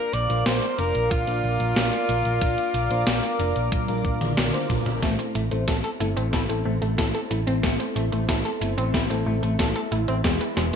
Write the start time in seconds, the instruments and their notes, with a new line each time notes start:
Already playing: fm electric piano A#3 D4 F4 A#4, alto saxophone A#4, analog synth pad A#4 D5 F5 D6
0.13 picked electric bass A#1, alto saxophone D5, closed hi-hat
0.30 picked electric bass A#1, fm electric piano A#3 D4 F4 C5, closed hi-hat
0.46 picked electric bass A#1, alto saxophone C5, snare, closed hi-hat
0.62 closed hi-hat
0.78 picked electric bass F1, fm electric piano A#3 D4 F4 A#4, alto saxophone A#4, closed hi-hat
0.95 picked electric bass A#1, closed hi-hat
1.11 picked electric bass A#1, alto saxophone F4, kick, closed hi-hat
1.27 picked electric bass A#1, fm electric piano A#3 D4 F4 A#4, closed hi-hat
1.44 picked electric bass A#1
1.60 picked electric bass A#1, closed hi-hat
1.76 picked electric bass A#1, fm electric piano A#3 D4 F4 A#4, snare, closed hi-hat
1.93 closed hi-hat
2.09 picked electric bass A#1, closed hi-hat
2.25 picked electric bass A#1, closed hi-hat
2.41 picked electric bass A#1, fm electric piano A#3 D4 F4 A#4, kick, closed hi-hat
2.58 closed hi-hat
2.74 picked electric bass A#1, closed hi-hat
2.90 picked electric bass A#1, fm electric piano A#3 D4 F4 C5, closed hi-hat
3.07 picked electric bass A#1, snare, closed hi-hat
3.23 closed hi-hat
3.39 picked electric bass F1, fm electric piano A#3 D4 F4 A#4, closed hi-hat
3.56 picked electric bass A#1, closed hi-hat
3.72 picked electric bass A#1, kick, closed hi-hat, high tom
3.88 picked electric bass A#1, fm electric piano A#3 D4 F4 A#4, closed hi-hat, high tom
4.05 picked electric bass A#1, kick, closed hi-hat
4.21 picked electric bass A#1, closed hi-hat, mid tom
4.37 picked electric bass A#1, snare, closed hi-hat, mid tom
4.54 fm electric piano A#3 D4 F4 C5, closed hi-hat
4.70 picked electric bass A#1, kick, closed hi-hat, mid tom
4.86 picked electric bass A#1, closed hi-hat, mid tom
5.02 picked electric bass A1, fm electric piano A3 C4 E4 A4, clean electric guitar A3, synth arpeggio sound A3, analog synth pad A4 C5 E5 C6, kick, snare, closed hi-hat
5.19 synth arpeggio sound C5, closed hi-hat
5.35 picked electric bass A1, synth arpeggio sound A3, clean electric guitar A3, closed hi-hat
5.51 picked electric bass A1, synth arpeggio sound A3, clean electric guitar A3, fm electric piano A3 C4 E4 C5, closed hi-hat
5.68 picked electric bass A1, synth arpeggio sound E4, clean electric guitar A4, kick, snare, closed hi-hat
5.84 synth arpeggio sound A4, clean electric guitar A4, closed hi-hat
6.00 picked electric bass G1, clean electric guitar A3, fm electric piano A3 C4 E4 A4, synth arpeggio sound E4, closed hi-hat
6.17 picked electric bass A1, clean electric guitar A3, synth arpeggio sound C4, closed hi-hat
6.33 synth arpeggio sound A3, clean electric guitar E4, kick, snare, closed hi-hat
6.49 picked electric bass A1, fm electric piano A3 C4 E4 A4, synth arpeggio sound C5, closed hi-hat
6.65 picked electric bass A1, synth arpeggio sound A3, clean electric guitar A3
6.82 picked electric bass A1, synth arpeggio sound A3, clean electric guitar A3, closed hi-hat
6.98 picked electric bass A1, fm electric piano A3 C4 E4 A4, synth arpeggio sound E4, clean electric guitar A4, kick, snare, closed hi-hat
7.14 synth arpeggio sound A4, clean electric guitar A4, closed hi-hat
7.31 picked electric bass A1, clean electric guitar A3, synth arpeggio sound E4, closed hi-hat
7.47 picked electric bass A1, synth arpeggio sound C4, clean electric guitar C4, closed hi-hat
7.63 synth arpeggio sound A3, fm electric piano A3 C4 E4 A4, clean electric guitar A3, kick, snare, closed hi-hat
7.80 synth arpeggio sound C5, closed hi-hat
7.96 picked electric bass A1, synth arpeggio sound A3, clean electric guitar A3, closed hi-hat
8.12 picked electric bass A1, synth arpeggio sound A3, fm electric piano A3 C4 E4 C5, clean electric guitar A3, closed hi-hat
8.29 picked electric bass A1, synth arpeggio sound E4, clean electric guitar A4, kick, snare, closed hi-hat
8.45 synth arpeggio sound A4, clean electric guitar A4, closed hi-hat
8.61 picked electric bass G1, fm electric piano A3 C4 E4 A4, clean electric guitar A3, synth arpeggio sound E4, closed hi-hat
8.78 picked electric bass A1, clean electric guitar A3, synth arpeggio sound C4, closed hi-hat
8.94 synth arpeggio sound A3, clean electric guitar E4, kick, snare, closed hi-hat
9.10 picked electric bass A1, fm electric piano A3 C4 E4 A4, synth arpeggio sound C5, closed hi-hat
9.26 picked electric bass A1, synth arpeggio sound A3, clean electric guitar A3
9.43 picked electric bass A1, synth arpeggio sound A3, clean electric guitar A3, closed hi-hat
9.59 picked electric bass A1, fm electric piano A3 C4 E4 A4, synth arpeggio sound E4, clean electric guitar A4, kick, snare, closed hi-hat
9.76 synth arpeggio sound A4, clean electric guitar A4, closed hi-hat
9.92 picked electric bass A1, clean electric guitar A3, synth arpeggio sound E4, closed hi-hat
10.08 picked electric bass A1, synth arpeggio sound C4, clean electric guitar C4, closed hi-hat
10.24 picked electric bass E1, clean electric guitar E3, synth arpeggio sound G#3, fm electric piano G#3 B3 E4 G#4, analog synth pad G#4 B4 B5, kick, snare, closed hi-hat
10.41 synth arpeggio sound B4, closed hi-hat
10.57 picked electric bass E1, clean electric guitar E3, synth arpeggio sound G#3, snare, closed hi-hat